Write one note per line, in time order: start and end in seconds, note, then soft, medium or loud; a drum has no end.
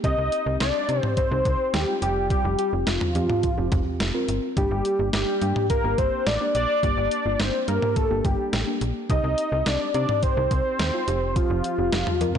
0.04 0.16 C2 loud
0.04 0.38 C4 medium
0.04 0.38 D#4 medium
0.04 0.38 G4 medium
0.04 0.57 D#5 loud
0.04 kick loud
0.04 closed hi-hat medium
0.18 0.30 C2 loud
0.32 closed hi-hat medium
0.46 0.58 C2 medium
0.46 0.81 C4 medium
0.46 0.81 D#4 medium
0.46 0.81 G4 medium
0.60 0.72 C2 loud
0.60 1.01 D5 loud
0.60 snare loud
0.60 closed hi-hat medium
0.89 1.00 C3 loud
0.89 1.23 C4 medium
0.89 1.23 D#4 medium
0.89 1.23 G4 medium
0.89 closed hi-hat medium
1.01 1.13 C5 loud
1.01 mid tom loud
1.17 1.75 C5 loud
1.17 kick loud
1.17 closed hi-hat medium
1.31 1.43 C2 loud
1.31 1.77 C4 medium
1.31 1.77 D#4 medium
1.31 1.77 G4 medium
1.45 1.57 C2 medium
1.45 kick loud
1.45 closed hi-hat medium
1.74 1.85 D#2 medium
1.74 2.01 G4 loud
1.74 snare loud
1.74 closed hi-hat medium
1.88 2.01 C4 medium
1.88 2.02 D#4 medium
1.88 2.01 F4 medium
2.02 2.37 F1 loud
2.02 2.59 C4 medium
2.02 2.59 F4 medium
2.02 2.28 G4 medium
2.02 2.59 G4 medium
2.02 closed hi-hat medium
2.30 2.57 G4 medium
2.30 kick loud
2.30 closed hi-hat medium
2.45 2.56 F1 loud
2.59 2.71 G4 medium
2.59 closed hi-hat medium
2.73 2.84 F1 medium
2.73 3.07 C4 medium
2.73 3.07 F4 medium
2.73 3.07 G4 medium
2.87 2.99 F1 loud
2.87 4.25 F4 medium
2.87 snare loud
2.87 closed hi-hat medium
3.01 mid tom medium
3.15 3.27 F2 medium
3.15 3.50 C4 medium
3.15 3.49 F4 medium
3.15 3.50 G4 medium
3.15 closed hi-hat medium
3.30 mid tom loud
3.43 kick medium
3.43 closed hi-hat medium
3.58 3.69 F1 medium
3.58 4.03 C4 medium
3.58 4.03 F4 medium
3.58 4.03 G4 medium
3.72 3.83 F1 loud
3.72 kick loud
3.72 closed hi-hat medium
3.72 mid tom medium
4.00 4.12 F1 medium
4.00 snare loud
4.00 closed hi-hat medium
4.14 4.49 C4 medium
4.14 4.49 F4 medium
4.14 4.49 A#4 medium
4.28 4.40 G1 medium
4.28 closed hi-hat medium
4.57 4.68 G1 loud
4.57 4.91 A#3 medium
4.57 4.91 D4 medium
4.57 4.91 G4 medium
4.57 5.10 G4 medium
4.57 kick loud
4.57 closed hi-hat medium
4.71 4.83 G1 medium
4.85 closed hi-hat medium
4.99 5.11 G1 medium
4.99 5.33 A#3 medium
4.99 5.33 D4 medium
4.99 5.33 G4 medium
5.13 5.25 G1 medium
5.13 5.66 G4 medium
5.13 snare loud
5.13 closed hi-hat medium
5.42 5.53 G2 loud
5.42 5.76 A#3 medium
5.42 5.76 D4 medium
5.42 5.76 G4 medium
5.42 closed hi-hat medium
5.56 mid tom medium
5.70 6.00 A#4 loud
5.70 kick loud
5.70 closed hi-hat medium
5.84 5.96 G1 medium
5.84 6.30 A#3 medium
5.84 6.30 D4 medium
5.84 6.30 G4 medium
5.98 6.10 G1 medium
5.98 6.28 C5 loud
5.98 kick loud
5.98 closed hi-hat medium
6.27 6.38 A1 loud
6.27 6.54 D5 loud
6.27 snare loud
6.27 closed hi-hat medium
6.41 6.75 A#3 medium
6.41 6.75 D4 medium
6.41 6.75 G4 medium
6.55 6.67 A#1 medium
6.55 7.41 D5 loud
6.55 closed hi-hat medium
6.83 6.95 G1 loud
6.83 7.17 A#3 medium
6.83 7.17 D4 medium
6.83 7.17 G4 medium
6.83 kick loud
6.83 closed hi-hat medium
6.97 7.09 G1 medium
7.11 closed hi-hat medium
7.26 7.37 G1 medium
7.26 7.60 A#3 medium
7.26 7.60 D4 medium
7.26 7.60 F4 medium
7.40 7.51 G1 loud
7.40 7.67 C5 loud
7.40 snare loud
7.40 closed hi-hat medium
7.68 7.80 G2 loud
7.68 8.02 A#3 medium
7.68 8.02 D4 medium
7.68 8.02 G4 medium
7.68 7.98 A#4 medium
7.68 closed hi-hat medium
7.82 mid tom medium
7.96 8.26 A4 loud
7.96 kick loud
7.96 closed hi-hat medium
8.11 8.22 G1 medium
8.11 8.56 A#3 medium
8.11 8.56 D4 medium
8.11 8.56 G4 medium
8.25 8.36 G1 loud
8.25 8.81 G4 medium
8.25 kick loud
8.25 closed hi-hat medium
8.53 8.65 A1 medium
8.53 snare loud
8.53 closed hi-hat medium
8.67 9.01 A#3 medium
8.67 9.01 D4 medium
8.67 9.01 G4 medium
8.81 8.93 A#1 medium
8.81 closed hi-hat medium
9.10 9.21 C2 loud
9.10 9.44 C4 medium
9.10 9.44 D#4 medium
9.10 9.44 G4 medium
9.10 9.68 D#5 loud
9.10 kick loud
9.10 closed hi-hat medium
9.24 9.35 C2 loud
9.38 closed hi-hat medium
9.52 9.64 C2 loud
9.52 9.86 C4 medium
9.52 9.86 D#4 medium
9.52 9.86 G4 medium
9.66 9.78 C2 loud
9.66 9.94 D5 loud
9.66 snare loud
9.66 closed hi-hat medium
9.94 10.06 C3 loud
9.94 10.29 C4 medium
9.94 10.29 D#4 medium
9.94 10.29 G4 medium
9.94 10.24 D5 loud
9.94 closed hi-hat medium
10.09 mid tom loud
10.23 11.38 C5 loud
10.23 kick loud
10.23 closed hi-hat medium
10.37 10.49 C2 loud
10.37 10.83 C4 medium
10.37 10.83 D#4 medium
10.37 10.83 G4 medium
10.51 10.63 C2 medium
10.51 kick loud
10.51 closed hi-hat medium
10.79 10.91 D#2 medium
10.79 snare loud
10.79 closed hi-hat medium
10.94 11.07 C4 medium
10.94 11.08 D#4 medium
10.94 11.07 F4 loud
11.08 11.43 F1 loud
11.08 11.65 C4 medium
11.08 11.65 F4 medium
11.08 11.65 G4 loud
11.08 closed hi-hat medium
11.36 12.38 F4 loud
11.36 kick loud
11.36 closed hi-hat medium
11.50 11.62 F1 loud
11.64 closed hi-hat medium
11.78 11.90 F1 medium
11.78 12.13 C4 medium
11.78 12.13 F4 medium
11.78 12.13 G4 medium
11.93 12.04 F1 loud
11.93 snare loud
11.93 closed hi-hat medium
12.07 mid tom medium
12.21 12.33 F2 loud
12.21 12.38 C4 medium
12.21 12.38 F4 medium
12.21 12.38 A#4 medium
12.21 closed hi-hat medium
12.35 mid tom loud